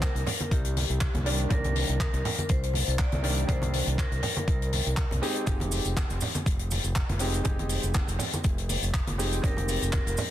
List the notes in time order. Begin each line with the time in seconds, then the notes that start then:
Already playing: D#3 G3 A#3 D4
0.02 A#4, kick, clap, closed hi-hat, high conga
0.15 C2, closed hi-hat
0.26 open hi-hat, low conga
0.40 closed hi-hat, high conga
0.51 C2 G4, kick, closed hi-hat
0.65 closed hi-hat
0.77 open hi-hat, high conga
0.90 C2, closed hi-hat
1.00 kick, clap, closed hi-hat
1.14 C2, closed hi-hat, high conga
1.25 D#3 G3 A#3 D4, open hi-hat
1.38 closed hi-hat
1.49 C2 D#3 G3 A#3 D4 A#4, kick, closed hi-hat, low conga
1.64 closed hi-hat, high conga
1.76 open hi-hat
1.89 C2, closed hi-hat
2.00 A#4, kick, clap, closed hi-hat, high conga
2.13 C2, closed hi-hat
2.25 open hi-hat, low conga
2.38 closed hi-hat, high conga
2.49 C2 C5, kick, closed hi-hat
2.63 closed hi-hat
2.73 open hi-hat, high conga
2.87 C2, closed hi-hat
2.99 D5, kick, clap, closed hi-hat
3.12 C2, closed hi-hat, high conga
3.22 D#3 G3 A#3 D4, open hi-hat
3.38 closed hi-hat
3.47 C2 D#3 G3 A#3 D4 C5, kick, closed hi-hat, low conga
3.62 closed hi-hat, high conga
3.73 open hi-hat
3.87 C2, closed hi-hat
3.98 A#4, kick, clap, closed hi-hat, high conga
4.11 C2, closed hi-hat
4.23 open hi-hat, low conga
4.36 closed hi-hat, high conga
4.48 C2 A#4, kick, closed hi-hat
4.62 closed hi-hat
4.73 open hi-hat, high conga
4.86 C2, closed hi-hat
4.97 kick, clap, closed hi-hat
5.11 C2, closed hi-hat, high conga
5.22 G#3 C4 D#4 G4, open hi-hat
5.35 closed hi-hat
5.46 F1 G#3 C4 D#4 G4, kick, closed hi-hat, low conga, cabasa
5.60 closed hi-hat, high conga
5.72 open hi-hat, cabasa
5.85 F1, closed hi-hat, cabasa
5.96 kick, clap, closed hi-hat, high conga, cabasa
6.10 F1, closed hi-hat, cabasa
6.21 open hi-hat, low conga, cabasa
6.35 closed hi-hat, high conga, cabasa
6.46 F1, kick, closed hi-hat, cabasa
6.59 closed hi-hat
6.71 open hi-hat, high conga, cabasa
6.84 F1, closed hi-hat, cabasa
6.95 kick, clap, closed hi-hat, cabasa
7.09 F1, closed hi-hat, high conga
7.19 G#3 C4 D#4 G4, open hi-hat, cabasa
7.34 closed hi-hat, cabasa
7.44 G#3 C4 D#4 G4, kick, closed hi-hat, low conga, cabasa
7.59 closed hi-hat, high conga
7.69 open hi-hat, cabasa
7.83 F1, closed hi-hat, cabasa
7.94 kick, clap, closed hi-hat, high conga, cabasa
8.08 F1, closed hi-hat, cabasa
8.19 open hi-hat, low conga, cabasa
8.33 closed hi-hat, high conga, cabasa
8.44 F1, kick, closed hi-hat, cabasa
8.58 closed hi-hat
8.69 open hi-hat, high conga, cabasa
8.82 F1, closed hi-hat, cabasa
8.94 kick, clap, closed hi-hat, cabasa
9.07 F1, closed hi-hat, high conga
9.18 G#3 C4 D#4 G4, open hi-hat, cabasa
9.32 closed hi-hat, cabasa
9.42 F1 G#3 C4 D#4 G4 A#4, kick, closed hi-hat, low conga, cabasa
9.57 closed hi-hat, high conga
9.68 open hi-hat, cabasa
9.82 F1, closed hi-hat, cabasa
9.93 A#4, kick, clap, closed hi-hat, high conga, cabasa
10.06 F1, closed hi-hat, cabasa
10.17 open hi-hat, low conga, cabasa